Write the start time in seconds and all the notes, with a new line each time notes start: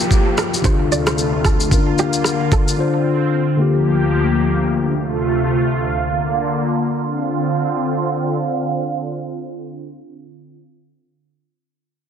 Already playing: F3 A#3 F4 G4, downlifter
0.11 kick, shaker
0.38 A#4, cross-stick, shaker
0.54 shaker
0.62 D2 C3 D3 A3 D4 F4 C5, kick, shaker
0.67 G4
0.73 A4
0.92 D5, shaker
1.07 C5, cross-stick, shaker
1.18 shaker
1.45 A4, kick, cross-stick, shaker
1.60 shaker
1.69 D3 A#3 C#4 F4, kick, shaker
1.74 D4 A#4
1.98 G4, shaker
2.13 shaker
2.24 cross-stick, shaker
2.52 A4, kick, shaker
2.68 shaker
2.77 D3 C4 D4 F4 C5
3.57 D2 D3 F3 A#3 F4 G4
3.62 G4
4.93 C3 A3 F4
6.00 D3 A#3
7.07 D3 C4 F4